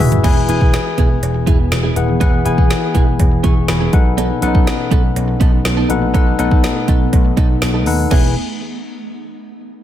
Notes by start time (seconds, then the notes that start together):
Already playing: E3 G#3 E4 F#4 G#5
0.00 D#1 E4 F#4 G#4 B4 E5, muted clean electric guitar stroke, mid tom
0.12 muted clean electric guitar stroke, closed hi-hat, floor tom
0.24 E1 E3 B3 E4 G#4 B4 G#5, kick, closed hi-hat, crash, cowbell
0.36 muted clean electric guitar stroke
0.49 E1 B3 E4 G#4 B4 G#5, closed hi-hat
0.61 B3 E4 G#4, kick
0.74 snare, closed hi-hat, cowbell
0.86 muted clean electric guitar stroke
0.98 E1 B3 E4 G#4, kick, closed hi-hat
1.10 muted clean electric guitar stroke
1.22 E1, closed hi-hat, cowbell
1.35 muted clean electric guitar stroke
1.47 E1 B3 E4 G#4, kick, closed hi-hat
1.59 muted clean electric guitar stroke
1.71 E1, muted clean electric guitar stroke, snare, closed hi-hat, cowbell
1.83 B3 E4 G#4
1.96 D#1 E4 G#4 B4 F#5, muted clean electric guitar stroke, closed hi-hat
2.08 muted clean electric guitar stroke
2.20 E1 E3 B3 E4 G#4 B4 F#5, kick, closed hi-hat, cowbell
2.33 muted clean electric guitar stroke
2.45 E1 B3 E4 G#4 B4 G#5, closed hi-hat
2.57 B3 E4 G#4, kick
2.70 snare, closed hi-hat, cowbell
2.82 muted clean electric guitar stroke
2.94 E1 B3 E4 G#4, kick, closed hi-hat
3.07 muted clean electric guitar stroke
3.19 E1, kick, closed hi-hat, cowbell
3.32 muted clean electric guitar stroke
3.44 E1 B3 E4 G#4 C#6, kick, closed hi-hat
3.56 muted clean electric guitar stroke
3.68 E1 G#5 B5, snare, closed hi-hat, cowbell
3.80 B3 E4 G#4
3.93 B1 B2 A3 B3 D#4 A4 B4 F#5, muted clean electric guitar stroke, kick, closed hi-hat
4.05 muted clean electric guitar stroke
4.17 B3 D#4 A4, closed hi-hat, cowbell
4.30 muted clean electric guitar stroke
4.42 B1 B3 C#4 D#4 A4 B4 F#5, closed hi-hat
4.48 D#4
4.54 B3 D#4 A4, kick
4.67 snare, closed hi-hat, cowbell
4.79 muted clean electric guitar stroke
4.91 B1 B3 D#4 A4, kick, closed hi-hat
5.03 muted clean electric guitar stroke
5.16 B1, closed hi-hat, cowbell
5.28 muted clean electric guitar stroke
5.40 B1 B3 D#4 A4, kick, closed hi-hat
5.53 muted clean electric guitar stroke
5.65 B1, muted clean electric guitar stroke, snare, closed hi-hat, cowbell
5.77 B3 D#4 A4
5.89 A#1 B2 D#4 A4 B4 F#5, muted clean electric guitar stroke, closed hi-hat
6.02 muted clean electric guitar stroke
6.14 B1 B3 D#4 A4 B4 F#5, kick, closed hi-hat, cowbell
6.26 muted clean electric guitar stroke
6.38 B1 B3 D#4 A4 B4 F#5, closed hi-hat, cowbell
6.51 B3 D#4 A4, kick
6.64 snare, closed hi-hat, tambourine, cowbell
6.76 muted clean electric guitar stroke
6.88 B1 B3 D#4 A4, kick, closed hi-hat
7.00 muted clean electric guitar stroke
7.13 B1, kick, closed hi-hat, cowbell
7.25 muted clean electric guitar stroke
7.37 B1 B3 D#4 A4, kick, closed hi-hat, cowbell
7.50 muted clean electric guitar stroke
7.62 B1, muted clean electric guitar stroke, snare, closed hi-hat, tambourine, cowbell
7.74 B3 D#4 A4
7.86 D#2 D#4 A4 B4 F#5, muted clean electric guitar stroke, open hi-hat
7.99 muted clean electric guitar stroke
8.11 E1 E2 B3 E4 G#4 B4 G#5, kick, crash, cowbell